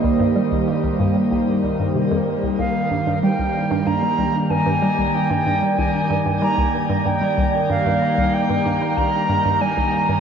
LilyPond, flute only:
\new Staff \with { instrumentName = "Flute" } { \time 4/4 \key c \minor \tempo 4 = 94 r1 | f''4 g''4 bes''4 aes''4 | g''4 aes''4 bes''8 r8 g''8. r16 | f''4 g''4 bes''4 aes''4 | }